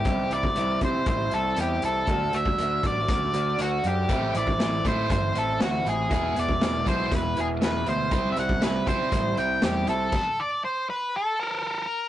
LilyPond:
<<
  \new Staff \with { instrumentName = "Lead electric guitar" } { \time 4/4 \key c \lydian \tempo 4 = 119 g'8 d''4 c''8 c''8 a'8 g'8 a'8~ | a'8 e''4 d''4. fis'8 g'8~ | g'8 d''4 c''8 c''8 a'8 fis'8 gis'8~ | gis'8 d''4 c''8 b'8 gis'8 b'8 c''8~ |
c''16. e''32 fis''8 b'8 c''4 g''8 g'8 a'8~ | a'8 d''8 c''8 b'8 a'8 bes'4. | }
  \new Staff \with { instrumentName = "Clean electric guitar" } { \time 4/4 \key c \lydian <c e g c' e'>8 <g c' e'>8 <c e g c' e'>8 <g c' e'>8 <e g c' e'>8 <c e g c' e'>8 <e g c' e'>8 <g c' e'>8 | <d a d' fis'>8 <a d' fis'>8 <d a d' fis'>8 fis'8 <d a d' fis'>8 <d a d' fis'>8 <d a d' fis'>8 <a d' fis'>8 | <a, e a c' e'>8 <a c' e'>8 <a, e a c' e'>8 <a c' e'>8 <e a c' e'>8 <a, e a c' e'>8 <e a c' e'>8 <a c' e'>8 | <e gis b e'>8 <gis b e'>8 <e gis b e'>8 <gis b e'>8 <e gis b e'>8 <e gis b e'>8 <e gis b e'>8 <gis b e'>8 |
<c g c' e'>8 <g c' e'>8 <c g c' e'>8 <g c' e'>8 <c g c' e'>8 <c g c' e'>8 <c g c' e'>8 <g c' e'>8 | r1 | }
  \new Staff \with { instrumentName = "Distorted electric guitar" } { \clef bass \time 4/4 \key c \lydian r1 | r1 | <a, e a>8 <a, e>8 <a, e>8 <a, e a>8 <a, e>8 <a, e>8 <a, e>8 <a, e>8 | <e, b, e>8 <e, b,>8 <e, b,>8 <e, b, e>8 <e, b,>8 <e, b,>8 <e, b,>8 <e, b,>8 |
<c g c'>8 <c g>8 <c g>8 <c g c'>8 <c g>8 <c g>8 <c g>8 <c g>8 | r1 | }
  \new Staff \with { instrumentName = "Picked electric bass" } { \clef bass \time 4/4 \key c \lydian c,8 c,8 c,8 c8 a,,8 c,8 e,8 c,8 | d,8 d,8 d,8 a,,8 d,8 d,8 d,8 fis,8 | a,,8 a,,8 a,,8 a,8 g,,8 a,,8 d,8 a,,8 | e,,8 e,,8 e,,8 b,,8 e,,8 e,,8 e,,8 d,8 |
c,8 c,8 c,8 c8 a,,8 c,8 e,8 c,8 | r1 | }
  \new DrumStaff \with { instrumentName = "Drums" } \drummode { \time 4/4 <hh bd>8 hh16 bd16 hh8 <hh bd>8 <hh bd>8 hh8 hh8 hh8 | <hh bd>8 hh16 bd16 hh8 <hh bd>8 <hh bd>8 hh8 hh8 hh8 | <hh bd>8 hh16 bd16 <hh sn>8 <hh bd>8 <hh bd>8 hh8 <hh sn>8 hh8 | <hh bd>8 hh16 bd16 <hh sn>8 <hh bd>8 <hh bd>8 hh8 <hh sn>8 hh8 |
<hh bd>8 hh16 bd16 <hh sn>8 <hh bd>8 <hh bd>8 hh8 <hh sn>8 hh8 | <cymc bd>4 r4 r4 r4 | }
>>